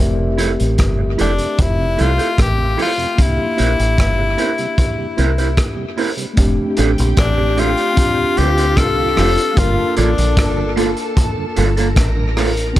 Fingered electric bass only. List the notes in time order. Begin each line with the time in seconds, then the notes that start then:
0.00 F1
0.61 A1
0.79 G1
1.20 F1
1.60 F1
2.00 C2
2.39 A1
3.19 C2
3.60 A#1
3.80 A1
3.99 G1
5.19 C2
6.38 F1
6.79 A1
7.00 A#1
7.18 A1
8.38 D2
8.78 C2
9.18 F1
9.58 G1
9.98 A1
10.18 A#1
10.38 G1
11.58 G1
11.97 A1